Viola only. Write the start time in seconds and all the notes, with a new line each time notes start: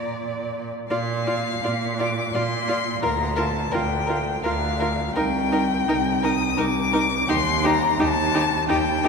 Already playing: D5
0.90 F4
1.27 F4
1.64 F4
2.00 F4
2.35 F4
2.68 F4
3.02 F4
3.37 F4
3.74 F4
4.09 F4
4.45 F4
4.81 F4
5.16 D#4
5.52 D#4
5.88 D#4
6.23 D#4
6.58 D#4
6.94 D#4
7.29 D#4
7.65 D#4
8.00 D#4
8.34 D#4
8.69 D#4
9.04 D#4